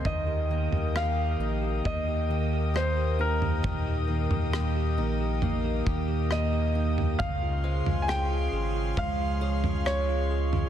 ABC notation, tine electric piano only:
X:1
M:4/4
L:1/16
Q:1/4=68
K:Ebmix
V:1 name="Tine electric piano"
E, G E, G B, G B, G B, G E, G2 G B, G | B,, G E, G B, G B, G B, G E, G B, G B, G | D, F c F A F A F A, F d F A F A F |]